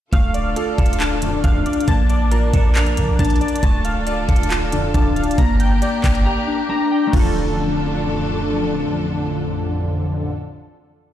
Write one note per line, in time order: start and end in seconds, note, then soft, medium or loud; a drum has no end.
0.13 0.55 D1 loud
0.13 1.86 D3 medium
0.13 1.22 A3 medium
0.13 5.34 D4 medium
0.13 1.86 F4 medium
0.13 1.86 A4 medium
0.13 1.43 F5 loud
0.13 kick loud
0.13 closed hi-hat medium
0.34 1.65 D5 medium
0.34 closed hi-hat medium
0.56 1.66 F4 medium
0.56 1.88 A4 medium
0.56 closed hi-hat medium
0.78 1.41 D1 loud
0.78 1.88 A4 medium
0.78 kick loud
0.78 closed hi-hat soft
0.86 closed hi-hat medium
0.93 closed hi-hat medium
1.00 1.88 D4 medium
1.00 1.88 A5 medium
1.00 clap loud
1.00 closed hi-hat medium
1.22 1.31 A1 loud
1.22 1.31 F2 medium
1.22 1.31 D3 loud
1.22 1.88 A3 medium
1.22 closed hi-hat medium
1.44 1.65 D1 loud
1.44 1.63 A1 loud
1.44 1.63 F2 loud
1.44 1.63 D3 loud
1.44 1.87 D4 loud
1.44 1.88 F5 loud
1.44 kick loud
1.44 closed hi-hat medium
1.66 1.88 D5 medium
1.66 closed hi-hat medium
1.73 closed hi-hat medium
1.80 closed hi-hat medium
1.88 2.22 A#1 loud
1.88 3.61 F3 medium
1.88 3.61 A#3 medium
1.88 2.97 A#3 medium
1.88 3.18 A5 loud
1.88 kick loud
1.88 closed hi-hat medium
2.10 3.40 D5 medium
2.10 closed hi-hat medium
2.21 2.52 A1 loud
2.31 3.41 F4 medium
2.31 3.63 A#4 medium
2.31 closed hi-hat medium
2.53 2.99 A#1 loud
2.53 3.63 A4 medium
2.53 kick loud
2.53 closed hi-hat medium
2.75 3.63 D4 medium
2.75 3.63 A#4 medium
2.75 clap loud
2.75 closed hi-hat medium
2.86 closed hi-hat soft
2.97 3.10 D3 loud
2.97 3.63 A#3 medium
2.97 closed hi-hat medium
3.08 3.19 A#1 loud
3.19 3.40 A#1 loud
3.19 3.63 D4 loud
3.19 3.62 A5 loud
3.19 kick loud
3.19 closed hi-hat medium
3.25 closed hi-hat medium
3.30 closed hi-hat medium
3.36 closed hi-hat soft
3.41 3.63 D5 medium
3.41 closed hi-hat soft
3.48 closed hi-hat medium
3.56 closed hi-hat medium
3.63 3.97 D1 loud
3.63 5.36 D3 medium
3.63 4.72 A3 medium
3.63 5.36 F4 medium
3.63 5.36 A4 medium
3.63 4.93 A5 loud
3.63 kick loud
3.63 closed hi-hat medium
3.85 5.15 F5 medium
3.85 closed hi-hat medium
3.96 4.27 C#1 loud
4.07 5.16 F4 medium
4.07 5.38 D5 medium
4.07 closed hi-hat medium
4.28 4.92 D1 loud
4.28 5.38 A4 loud
4.28 kick medium
4.28 closed hi-hat soft
4.36 closed hi-hat medium
4.43 closed hi-hat medium
4.50 5.38 F4 medium
4.50 5.38 A5 medium
4.50 clap loud
4.50 closed hi-hat medium
4.72 4.82 A1 loud
4.72 4.82 F2 loud
4.72 4.82 D3 loud
4.72 5.38 D4 medium
4.72 closed hi-hat medium
4.94 5.29 D1 loud
4.94 5.13 A1 loud
4.94 5.13 F2 medium
4.94 5.13 D3 loud
4.94 5.38 D4 medium
4.94 5.38 A5 medium
4.94 kick loud
4.94 closed hi-hat medium
5.16 5.38 F5 medium
5.16 closed hi-hat medium
5.24 5.38 C#1 loud
5.24 closed hi-hat medium
5.31 closed hi-hat medium
5.38 5.80 G1 loud
5.38 7.12 A#3 medium
5.38 6.48 A#3 medium
5.38 7.12 D4 medium
5.38 7.12 G4 medium
5.38 6.69 A#5 loud
5.38 kick loud
5.38 closed hi-hat medium
5.60 6.90 G5 medium
5.60 closed hi-hat medium
5.82 6.91 G4 medium
5.82 7.13 D5 medium
5.82 closed hi-hat medium
6.04 6.26 G1 loud
6.04 7.13 A#4 medium
6.04 kick loud
6.04 clap loud
6.04 closed hi-hat medium
6.04 open hi-hat medium
6.15 closed hi-hat soft
6.26 7.13 G4 medium
6.26 7.13 A#5 medium
6.48 7.06 D4 medium
6.70 7.07 D4 medium
6.70 7.13 A#5 loud
6.91 7.13 G5 medium
7.07 10.24 A3 medium
7.07 10.24 D4 medium
7.11 8.85 D1 loud
7.11 10.30 A1 medium
7.11 10.30 F2 medium
7.11 10.30 D3 loud
7.11 10.30 D3 medium
7.11 10.28 D4 medium
7.11 10.30 D4 medium
7.11 10.30 F4 medium
7.11 10.32 F4 medium
7.11 10.30 A4 medium
7.11 kick loud
7.11 crash medium
7.19 10.36 A4 loud
7.19 10.36 A4 medium